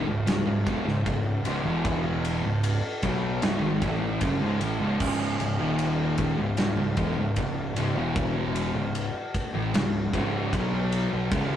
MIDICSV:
0, 0, Header, 1, 4, 480
1, 0, Start_track
1, 0, Key_signature, 4, "minor"
1, 0, Tempo, 788229
1, 1127, Time_signature, 4, 2, 24, 8
1, 7042, End_track
2, 0, Start_track
2, 0, Title_t, "Distorted electric guitar"
2, 0, Program_c, 0, 30
2, 41, Note_on_c, 0, 37, 62
2, 43, Note_on_c, 0, 44, 75
2, 154, Note_off_c, 0, 37, 0
2, 157, Note_off_c, 0, 44, 0
2, 162, Note_on_c, 0, 37, 64
2, 165, Note_on_c, 0, 44, 73
2, 273, Note_off_c, 0, 37, 0
2, 277, Note_off_c, 0, 44, 0
2, 280, Note_on_c, 0, 37, 62
2, 284, Note_on_c, 0, 44, 74
2, 395, Note_off_c, 0, 37, 0
2, 398, Note_on_c, 0, 40, 106
2, 403, Note_off_c, 0, 44, 0
2, 405, Note_on_c, 0, 47, 108
2, 515, Note_off_c, 0, 40, 0
2, 519, Note_off_c, 0, 47, 0
2, 520, Note_on_c, 0, 37, 66
2, 523, Note_on_c, 0, 44, 83
2, 632, Note_off_c, 0, 37, 0
2, 633, Note_off_c, 0, 44, 0
2, 639, Note_on_c, 0, 37, 72
2, 640, Note_on_c, 0, 44, 92
2, 835, Note_off_c, 0, 37, 0
2, 836, Note_off_c, 0, 44, 0
2, 876, Note_on_c, 0, 37, 85
2, 882, Note_on_c, 0, 44, 94
2, 994, Note_off_c, 0, 37, 0
2, 997, Note_off_c, 0, 44, 0
2, 1000, Note_on_c, 0, 40, 101
2, 1004, Note_on_c, 0, 47, 108
2, 1010, Note_on_c, 0, 52, 100
2, 1476, Note_off_c, 0, 40, 0
2, 1479, Note_off_c, 0, 47, 0
2, 1481, Note_off_c, 0, 52, 0
2, 1487, Note_on_c, 0, 37, 66
2, 1491, Note_on_c, 0, 44, 80
2, 1679, Note_off_c, 0, 37, 0
2, 1681, Note_off_c, 0, 44, 0
2, 1842, Note_on_c, 0, 47, 101
2, 1850, Note_on_c, 0, 54, 104
2, 1853, Note_on_c, 0, 59, 103
2, 2078, Note_off_c, 0, 47, 0
2, 2082, Note_off_c, 0, 54, 0
2, 2083, Note_off_c, 0, 59, 0
2, 2089, Note_on_c, 0, 37, 95
2, 2094, Note_on_c, 0, 44, 101
2, 2201, Note_off_c, 0, 37, 0
2, 2203, Note_off_c, 0, 44, 0
2, 2210, Note_on_c, 0, 44, 84
2, 2215, Note_on_c, 0, 51, 96
2, 2321, Note_off_c, 0, 44, 0
2, 2324, Note_off_c, 0, 51, 0
2, 2330, Note_on_c, 0, 45, 111
2, 2334, Note_on_c, 0, 52, 107
2, 2339, Note_on_c, 0, 57, 117
2, 2562, Note_off_c, 0, 45, 0
2, 2564, Note_off_c, 0, 52, 0
2, 2566, Note_off_c, 0, 57, 0
2, 2571, Note_on_c, 0, 42, 102
2, 2576, Note_on_c, 0, 49, 119
2, 2682, Note_off_c, 0, 42, 0
2, 2684, Note_off_c, 0, 49, 0
2, 2685, Note_on_c, 0, 37, 102
2, 2692, Note_on_c, 0, 44, 100
2, 2799, Note_off_c, 0, 37, 0
2, 2802, Note_off_c, 0, 44, 0
2, 2805, Note_on_c, 0, 45, 84
2, 2810, Note_on_c, 0, 52, 93
2, 2919, Note_off_c, 0, 45, 0
2, 2921, Note_off_c, 0, 52, 0
2, 2921, Note_on_c, 0, 37, 113
2, 2926, Note_on_c, 0, 44, 112
2, 3033, Note_off_c, 0, 37, 0
2, 3040, Note_off_c, 0, 44, 0
2, 3041, Note_on_c, 0, 37, 103
2, 3047, Note_on_c, 0, 44, 109
2, 3053, Note_on_c, 0, 49, 119
2, 3275, Note_off_c, 0, 37, 0
2, 3277, Note_off_c, 0, 44, 0
2, 3282, Note_on_c, 0, 37, 71
2, 3283, Note_off_c, 0, 49, 0
2, 3284, Note_on_c, 0, 44, 70
2, 3395, Note_off_c, 0, 37, 0
2, 3398, Note_on_c, 0, 39, 93
2, 3402, Note_off_c, 0, 44, 0
2, 3404, Note_on_c, 0, 46, 99
2, 3408, Note_on_c, 0, 51, 112
2, 3875, Note_off_c, 0, 39, 0
2, 3879, Note_off_c, 0, 46, 0
2, 3881, Note_off_c, 0, 51, 0
2, 3886, Note_on_c, 0, 37, 60
2, 3889, Note_on_c, 0, 44, 70
2, 3999, Note_off_c, 0, 37, 0
2, 4001, Note_off_c, 0, 44, 0
2, 4006, Note_on_c, 0, 37, 68
2, 4009, Note_on_c, 0, 44, 74
2, 4116, Note_off_c, 0, 37, 0
2, 4118, Note_off_c, 0, 44, 0
2, 4123, Note_on_c, 0, 37, 70
2, 4125, Note_on_c, 0, 44, 65
2, 4239, Note_off_c, 0, 37, 0
2, 4241, Note_on_c, 0, 40, 116
2, 4243, Note_off_c, 0, 44, 0
2, 4245, Note_on_c, 0, 47, 115
2, 4357, Note_off_c, 0, 40, 0
2, 4359, Note_off_c, 0, 47, 0
2, 4364, Note_on_c, 0, 37, 65
2, 4368, Note_on_c, 0, 44, 74
2, 4482, Note_off_c, 0, 37, 0
2, 4488, Note_off_c, 0, 44, 0
2, 4490, Note_on_c, 0, 37, 72
2, 4494, Note_on_c, 0, 44, 82
2, 4681, Note_off_c, 0, 37, 0
2, 4683, Note_off_c, 0, 44, 0
2, 4731, Note_on_c, 0, 37, 78
2, 4735, Note_on_c, 0, 44, 87
2, 4842, Note_off_c, 0, 37, 0
2, 4844, Note_off_c, 0, 44, 0
2, 4846, Note_on_c, 0, 40, 112
2, 4849, Note_on_c, 0, 47, 110
2, 4856, Note_on_c, 0, 52, 105
2, 5319, Note_off_c, 0, 40, 0
2, 5321, Note_off_c, 0, 47, 0
2, 5324, Note_off_c, 0, 52, 0
2, 5326, Note_on_c, 0, 37, 74
2, 5329, Note_on_c, 0, 44, 74
2, 5519, Note_off_c, 0, 37, 0
2, 5520, Note_off_c, 0, 44, 0
2, 5809, Note_on_c, 0, 45, 93
2, 5813, Note_on_c, 0, 52, 94
2, 5921, Note_off_c, 0, 45, 0
2, 5923, Note_off_c, 0, 52, 0
2, 5931, Note_on_c, 0, 37, 76
2, 5936, Note_on_c, 0, 44, 81
2, 6122, Note_off_c, 0, 37, 0
2, 6124, Note_off_c, 0, 44, 0
2, 6170, Note_on_c, 0, 37, 93
2, 6172, Note_on_c, 0, 44, 117
2, 6177, Note_on_c, 0, 49, 110
2, 6402, Note_off_c, 0, 37, 0
2, 6403, Note_off_c, 0, 44, 0
2, 6405, Note_off_c, 0, 49, 0
2, 6411, Note_on_c, 0, 47, 118
2, 6415, Note_on_c, 0, 54, 111
2, 6419, Note_on_c, 0, 59, 108
2, 6762, Note_off_c, 0, 47, 0
2, 6764, Note_off_c, 0, 54, 0
2, 6766, Note_off_c, 0, 59, 0
2, 6771, Note_on_c, 0, 47, 96
2, 6778, Note_on_c, 0, 54, 102
2, 6882, Note_off_c, 0, 47, 0
2, 6886, Note_off_c, 0, 54, 0
2, 6890, Note_on_c, 0, 37, 108
2, 6893, Note_on_c, 0, 44, 100
2, 6897, Note_on_c, 0, 49, 114
2, 7042, Note_off_c, 0, 37, 0
2, 7042, Note_off_c, 0, 44, 0
2, 7042, Note_off_c, 0, 49, 0
2, 7042, End_track
3, 0, Start_track
3, 0, Title_t, "Fingered electric bass"
3, 0, Program_c, 1, 33
3, 46, Note_on_c, 1, 25, 79
3, 158, Note_off_c, 1, 25, 0
3, 164, Note_on_c, 1, 25, 74
3, 277, Note_off_c, 1, 25, 0
3, 282, Note_on_c, 1, 25, 94
3, 396, Note_off_c, 1, 25, 0
3, 403, Note_on_c, 1, 28, 88
3, 513, Note_off_c, 1, 28, 0
3, 516, Note_on_c, 1, 25, 90
3, 633, Note_off_c, 1, 25, 0
3, 647, Note_on_c, 1, 25, 95
3, 870, Note_off_c, 1, 25, 0
3, 878, Note_on_c, 1, 25, 112
3, 994, Note_off_c, 1, 25, 0
3, 1001, Note_on_c, 1, 28, 104
3, 1460, Note_off_c, 1, 28, 0
3, 1485, Note_on_c, 1, 25, 77
3, 1709, Note_off_c, 1, 25, 0
3, 1846, Note_on_c, 1, 35, 110
3, 2070, Note_off_c, 1, 35, 0
3, 2080, Note_on_c, 1, 25, 95
3, 2195, Note_off_c, 1, 25, 0
3, 2205, Note_on_c, 1, 32, 109
3, 2318, Note_off_c, 1, 32, 0
3, 2325, Note_on_c, 1, 33, 103
3, 2549, Note_off_c, 1, 33, 0
3, 2568, Note_on_c, 1, 30, 110
3, 2679, Note_off_c, 1, 30, 0
3, 2692, Note_on_c, 1, 25, 105
3, 2802, Note_off_c, 1, 25, 0
3, 2812, Note_on_c, 1, 33, 107
3, 2921, Note_off_c, 1, 33, 0
3, 2933, Note_on_c, 1, 25, 96
3, 3042, Note_off_c, 1, 25, 0
3, 3048, Note_on_c, 1, 25, 92
3, 3271, Note_off_c, 1, 25, 0
3, 3288, Note_on_c, 1, 25, 92
3, 3399, Note_off_c, 1, 25, 0
3, 3413, Note_on_c, 1, 27, 93
3, 3866, Note_off_c, 1, 27, 0
3, 3886, Note_on_c, 1, 25, 80
3, 3998, Note_off_c, 1, 25, 0
3, 4010, Note_on_c, 1, 25, 83
3, 4120, Note_off_c, 1, 25, 0
3, 4133, Note_on_c, 1, 25, 87
3, 4242, Note_off_c, 1, 25, 0
3, 4247, Note_on_c, 1, 28, 97
3, 4359, Note_off_c, 1, 28, 0
3, 4371, Note_on_c, 1, 25, 87
3, 4481, Note_off_c, 1, 25, 0
3, 4484, Note_on_c, 1, 25, 83
3, 4709, Note_off_c, 1, 25, 0
3, 4727, Note_on_c, 1, 25, 108
3, 4839, Note_off_c, 1, 25, 0
3, 4849, Note_on_c, 1, 28, 109
3, 5304, Note_off_c, 1, 28, 0
3, 5327, Note_on_c, 1, 25, 87
3, 5551, Note_off_c, 1, 25, 0
3, 5814, Note_on_c, 1, 33, 101
3, 5923, Note_off_c, 1, 33, 0
3, 5934, Note_on_c, 1, 25, 86
3, 6154, Note_off_c, 1, 25, 0
3, 6173, Note_on_c, 1, 25, 96
3, 6394, Note_off_c, 1, 25, 0
3, 6411, Note_on_c, 1, 35, 107
3, 6745, Note_off_c, 1, 35, 0
3, 6775, Note_on_c, 1, 35, 104
3, 6883, Note_off_c, 1, 35, 0
3, 6891, Note_on_c, 1, 25, 98
3, 7042, Note_off_c, 1, 25, 0
3, 7042, End_track
4, 0, Start_track
4, 0, Title_t, "Drums"
4, 165, Note_on_c, 9, 51, 107
4, 173, Note_on_c, 9, 38, 107
4, 226, Note_off_c, 9, 51, 0
4, 233, Note_off_c, 9, 38, 0
4, 405, Note_on_c, 9, 51, 70
4, 406, Note_on_c, 9, 36, 71
4, 466, Note_off_c, 9, 51, 0
4, 467, Note_off_c, 9, 36, 0
4, 535, Note_on_c, 9, 38, 35
4, 596, Note_off_c, 9, 38, 0
4, 646, Note_on_c, 9, 36, 79
4, 646, Note_on_c, 9, 51, 101
4, 707, Note_off_c, 9, 36, 0
4, 707, Note_off_c, 9, 51, 0
4, 883, Note_on_c, 9, 51, 83
4, 944, Note_off_c, 9, 51, 0
4, 1125, Note_on_c, 9, 51, 106
4, 1126, Note_on_c, 9, 36, 120
4, 1186, Note_off_c, 9, 51, 0
4, 1187, Note_off_c, 9, 36, 0
4, 1368, Note_on_c, 9, 51, 90
4, 1429, Note_off_c, 9, 51, 0
4, 1605, Note_on_c, 9, 51, 121
4, 1666, Note_off_c, 9, 51, 0
4, 1842, Note_on_c, 9, 51, 80
4, 1846, Note_on_c, 9, 36, 79
4, 1903, Note_off_c, 9, 51, 0
4, 1907, Note_off_c, 9, 36, 0
4, 2083, Note_on_c, 9, 51, 106
4, 2091, Note_on_c, 9, 38, 121
4, 2144, Note_off_c, 9, 51, 0
4, 2151, Note_off_c, 9, 38, 0
4, 2324, Note_on_c, 9, 51, 87
4, 2326, Note_on_c, 9, 36, 87
4, 2385, Note_off_c, 9, 51, 0
4, 2387, Note_off_c, 9, 36, 0
4, 2562, Note_on_c, 9, 51, 120
4, 2566, Note_on_c, 9, 36, 85
4, 2623, Note_off_c, 9, 51, 0
4, 2627, Note_off_c, 9, 36, 0
4, 2806, Note_on_c, 9, 51, 94
4, 2867, Note_off_c, 9, 51, 0
4, 3045, Note_on_c, 9, 49, 124
4, 3047, Note_on_c, 9, 36, 120
4, 3106, Note_off_c, 9, 49, 0
4, 3108, Note_off_c, 9, 36, 0
4, 3287, Note_on_c, 9, 51, 84
4, 3348, Note_off_c, 9, 51, 0
4, 3523, Note_on_c, 9, 51, 104
4, 3584, Note_off_c, 9, 51, 0
4, 3761, Note_on_c, 9, 51, 74
4, 3766, Note_on_c, 9, 36, 76
4, 3822, Note_off_c, 9, 51, 0
4, 3827, Note_off_c, 9, 36, 0
4, 4001, Note_on_c, 9, 51, 105
4, 4009, Note_on_c, 9, 38, 113
4, 4062, Note_off_c, 9, 51, 0
4, 4069, Note_off_c, 9, 38, 0
4, 4243, Note_on_c, 9, 51, 70
4, 4247, Note_on_c, 9, 36, 88
4, 4304, Note_off_c, 9, 51, 0
4, 4308, Note_off_c, 9, 36, 0
4, 4483, Note_on_c, 9, 51, 101
4, 4487, Note_on_c, 9, 36, 84
4, 4544, Note_off_c, 9, 51, 0
4, 4548, Note_off_c, 9, 36, 0
4, 4727, Note_on_c, 9, 51, 85
4, 4788, Note_off_c, 9, 51, 0
4, 4968, Note_on_c, 9, 51, 109
4, 4969, Note_on_c, 9, 36, 126
4, 5029, Note_off_c, 9, 51, 0
4, 5030, Note_off_c, 9, 36, 0
4, 5210, Note_on_c, 9, 51, 84
4, 5271, Note_off_c, 9, 51, 0
4, 5450, Note_on_c, 9, 51, 110
4, 5511, Note_off_c, 9, 51, 0
4, 5690, Note_on_c, 9, 51, 82
4, 5691, Note_on_c, 9, 36, 80
4, 5751, Note_off_c, 9, 51, 0
4, 5752, Note_off_c, 9, 36, 0
4, 5933, Note_on_c, 9, 51, 119
4, 5940, Note_on_c, 9, 38, 125
4, 5994, Note_off_c, 9, 51, 0
4, 6001, Note_off_c, 9, 38, 0
4, 6172, Note_on_c, 9, 36, 73
4, 6174, Note_on_c, 9, 51, 74
4, 6233, Note_off_c, 9, 36, 0
4, 6235, Note_off_c, 9, 51, 0
4, 6412, Note_on_c, 9, 36, 87
4, 6415, Note_on_c, 9, 51, 113
4, 6473, Note_off_c, 9, 36, 0
4, 6475, Note_off_c, 9, 51, 0
4, 6652, Note_on_c, 9, 51, 89
4, 6713, Note_off_c, 9, 51, 0
4, 6890, Note_on_c, 9, 51, 122
4, 6891, Note_on_c, 9, 36, 119
4, 6951, Note_off_c, 9, 51, 0
4, 6952, Note_off_c, 9, 36, 0
4, 7042, End_track
0, 0, End_of_file